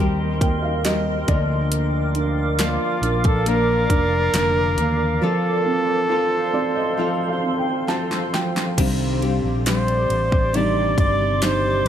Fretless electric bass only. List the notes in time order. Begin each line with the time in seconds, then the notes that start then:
Already playing: D#2
1.28 D2
3.02 A#1
3.90 F1
4.33 F1
4.77 D#2
8.78 C2
9.44 A#1
10.10 A1
10.98 G1